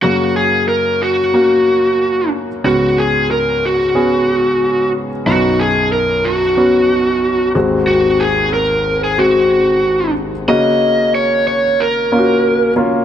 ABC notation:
X:1
M:4/4
L:1/16
Q:"Swing 16ths" 1/4=92
K:F#
V:1 name="Lead electric guitar"
F2 G2 A2 F8 z2 | F2 G2 A2 F8 z2 | F2 G2 A2 F8 z2 | F2 G2 A3 G F6 z2 |
d4 c2 c2 A6 z2 |]
V:2 name="Grand piano"
[A,CF]6 z2 [A,CF]6 z2 | [B,CF]6 z2 [B,CG]6 z2 | [B,CD]6 z2 [B,CF]6 [G,^B,F]2- | [G,^B,F]4 z4 [G,B,F]6 z2 |
[A,CF]6 z4 [A,CEF]4 [A,CE]2 |]
V:3 name="Grand piano" clef=bass
[F,,C,]16 | [C,,G,,]16 | [B,,,F,,]12- [B,,,F,,]2 [G,,,D,,]2- | [G,,,D,,]12- [G,,,D,,]2 z2 |
C,6 z8 z2 |]